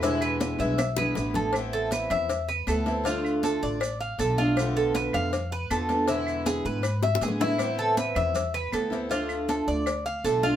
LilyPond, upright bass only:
\new Staff \with { instrumentName = "Upright bass" } { \clef bass \time 4/4 \key e \phrygian \tempo 4 = 159 e,4. b,,4. a,,4~ | \key a \minor a,,4. e,4. d,4~ | d,4. a,,4. b,,4~ | b,,4. f,4. e,4~ |
e,4. gis,4. a,4~ | a,4. e,4. d,4~ | d,4. d,4. b,,4 | }